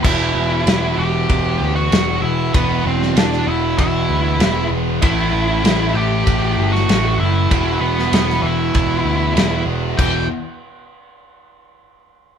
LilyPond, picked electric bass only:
\new Staff \with { instrumentName = "Picked electric bass" } { \clef bass \time 4/4 \key e \minor \tempo 4 = 97 e,,8 e,,8 e,,8 e,,8 e,,8 d,8 e,,8 e,,8 | e,,8 e,,8 e,,8 e,,8 e,,8 d,8 e,,8 e,,8 | a,,8 a,,8 a,,8 a,,8 a,,8 g,,8 a,,8 fis,,8 | e,,8 e,,8 e,,8 e,,8 e,,8 d,8 e,,8 e,,8 |
e,,8 r2. r8 | }